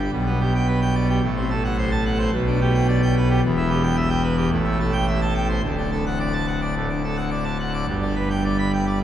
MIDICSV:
0, 0, Header, 1, 2, 480
1, 0, Start_track
1, 0, Key_signature, 1, "major"
1, 0, Tempo, 549451
1, 1073, Time_signature, 4, 2, 24, 8
1, 3946, Tempo, 560224
1, 7816, End_track
2, 0, Start_track
2, 0, Title_t, "Pipe organ"
2, 0, Program_c, 0, 19
2, 0, Note_on_c, 0, 67, 73
2, 89, Note_off_c, 0, 67, 0
2, 105, Note_on_c, 0, 47, 88
2, 110, Note_on_c, 0, 35, 82
2, 231, Note_on_c, 0, 59, 69
2, 338, Note_off_c, 0, 59, 0
2, 352, Note_on_c, 0, 67, 68
2, 459, Note_off_c, 0, 67, 0
2, 478, Note_on_c, 0, 79, 91
2, 583, Note_off_c, 0, 79, 0
2, 587, Note_on_c, 0, 71, 80
2, 697, Note_off_c, 0, 71, 0
2, 714, Note_on_c, 0, 79, 80
2, 821, Note_off_c, 0, 79, 0
2, 832, Note_on_c, 0, 74, 77
2, 940, Note_off_c, 0, 74, 0
2, 957, Note_on_c, 0, 67, 68
2, 1043, Note_off_c, 0, 47, 0
2, 1046, Note_off_c, 0, 35, 0
2, 1058, Note_off_c, 0, 67, 0
2, 1073, Note_on_c, 0, 33, 90
2, 1073, Note_on_c, 0, 45, 96
2, 1193, Note_on_c, 0, 60, 74
2, 1301, Note_off_c, 0, 60, 0
2, 1313, Note_on_c, 0, 69, 75
2, 1420, Note_off_c, 0, 69, 0
2, 1437, Note_on_c, 0, 78, 78
2, 1543, Note_off_c, 0, 78, 0
2, 1554, Note_on_c, 0, 72, 79
2, 1661, Note_off_c, 0, 72, 0
2, 1673, Note_on_c, 0, 81, 98
2, 1781, Note_off_c, 0, 81, 0
2, 1795, Note_on_c, 0, 78, 80
2, 1902, Note_off_c, 0, 78, 0
2, 1909, Note_on_c, 0, 72, 81
2, 2005, Note_off_c, 0, 33, 0
2, 2005, Note_off_c, 0, 45, 0
2, 2013, Note_off_c, 0, 72, 0
2, 2037, Note_on_c, 0, 35, 101
2, 2038, Note_on_c, 0, 47, 96
2, 2160, Note_on_c, 0, 62, 75
2, 2265, Note_off_c, 0, 62, 0
2, 2278, Note_on_c, 0, 67, 77
2, 2384, Note_off_c, 0, 67, 0
2, 2395, Note_on_c, 0, 79, 105
2, 2502, Note_off_c, 0, 79, 0
2, 2522, Note_on_c, 0, 74, 91
2, 2627, Note_off_c, 0, 74, 0
2, 2641, Note_on_c, 0, 79, 86
2, 2746, Note_off_c, 0, 79, 0
2, 2768, Note_on_c, 0, 71, 88
2, 2870, Note_off_c, 0, 71, 0
2, 2883, Note_on_c, 0, 67, 87
2, 2967, Note_off_c, 0, 35, 0
2, 2968, Note_off_c, 0, 47, 0
2, 2981, Note_off_c, 0, 67, 0
2, 3003, Note_on_c, 0, 28, 114
2, 3006, Note_on_c, 0, 40, 118
2, 3117, Note_on_c, 0, 64, 84
2, 3221, Note_off_c, 0, 64, 0
2, 3230, Note_on_c, 0, 67, 87
2, 3336, Note_off_c, 0, 67, 0
2, 3349, Note_on_c, 0, 79, 115
2, 3455, Note_off_c, 0, 79, 0
2, 3466, Note_on_c, 0, 76, 93
2, 3573, Note_off_c, 0, 76, 0
2, 3579, Note_on_c, 0, 79, 93
2, 3688, Note_off_c, 0, 79, 0
2, 3702, Note_on_c, 0, 71, 91
2, 3810, Note_off_c, 0, 71, 0
2, 3821, Note_on_c, 0, 67, 96
2, 3922, Note_off_c, 0, 28, 0
2, 3924, Note_off_c, 0, 40, 0
2, 3925, Note_off_c, 0, 67, 0
2, 3945, Note_on_c, 0, 33, 112
2, 3946, Note_on_c, 0, 45, 107
2, 4061, Note_on_c, 0, 64, 83
2, 4169, Note_off_c, 0, 64, 0
2, 4188, Note_on_c, 0, 69, 90
2, 4293, Note_off_c, 0, 69, 0
2, 4298, Note_on_c, 0, 79, 86
2, 4406, Note_off_c, 0, 79, 0
2, 4425, Note_on_c, 0, 76, 89
2, 4530, Note_off_c, 0, 76, 0
2, 4544, Note_on_c, 0, 81, 109
2, 4649, Note_off_c, 0, 81, 0
2, 4657, Note_on_c, 0, 79, 85
2, 4765, Note_off_c, 0, 79, 0
2, 4783, Note_on_c, 0, 72, 82
2, 4870, Note_off_c, 0, 33, 0
2, 4870, Note_off_c, 0, 45, 0
2, 4884, Note_off_c, 0, 72, 0
2, 4900, Note_on_c, 0, 26, 97
2, 4900, Note_on_c, 0, 38, 100
2, 5026, Note_on_c, 0, 62, 72
2, 5131, Note_off_c, 0, 62, 0
2, 5148, Note_on_c, 0, 69, 76
2, 5253, Note_off_c, 0, 69, 0
2, 5268, Note_on_c, 0, 78, 76
2, 5373, Note_off_c, 0, 78, 0
2, 5387, Note_on_c, 0, 74, 80
2, 5493, Note_off_c, 0, 74, 0
2, 5499, Note_on_c, 0, 81, 97
2, 5609, Note_off_c, 0, 81, 0
2, 5622, Note_on_c, 0, 78, 79
2, 5730, Note_off_c, 0, 78, 0
2, 5743, Note_on_c, 0, 74, 75
2, 5851, Note_off_c, 0, 74, 0
2, 5865, Note_on_c, 0, 45, 70
2, 5972, Note_off_c, 0, 45, 0
2, 5981, Note_on_c, 0, 62, 66
2, 6090, Note_off_c, 0, 62, 0
2, 6104, Note_on_c, 0, 69, 68
2, 6211, Note_off_c, 0, 69, 0
2, 6215, Note_on_c, 0, 78, 71
2, 6326, Note_off_c, 0, 78, 0
2, 6338, Note_on_c, 0, 74, 77
2, 6448, Note_off_c, 0, 74, 0
2, 6453, Note_on_c, 0, 81, 70
2, 6566, Note_off_c, 0, 81, 0
2, 6582, Note_on_c, 0, 78, 68
2, 6692, Note_off_c, 0, 78, 0
2, 6704, Note_on_c, 0, 74, 68
2, 6794, Note_off_c, 0, 26, 0
2, 6794, Note_off_c, 0, 38, 0
2, 6808, Note_off_c, 0, 74, 0
2, 6821, Note_on_c, 0, 31, 89
2, 6821, Note_on_c, 0, 43, 99
2, 6948, Note_on_c, 0, 62, 69
2, 7056, Note_off_c, 0, 62, 0
2, 7066, Note_on_c, 0, 71, 73
2, 7175, Note_off_c, 0, 71, 0
2, 7190, Note_on_c, 0, 79, 75
2, 7297, Note_off_c, 0, 79, 0
2, 7310, Note_on_c, 0, 74, 79
2, 7417, Note_off_c, 0, 74, 0
2, 7432, Note_on_c, 0, 83, 101
2, 7538, Note_off_c, 0, 83, 0
2, 7561, Note_on_c, 0, 79, 78
2, 7663, Note_off_c, 0, 79, 0
2, 7674, Note_on_c, 0, 74, 78
2, 7778, Note_off_c, 0, 74, 0
2, 7816, Note_off_c, 0, 31, 0
2, 7816, Note_off_c, 0, 43, 0
2, 7816, End_track
0, 0, End_of_file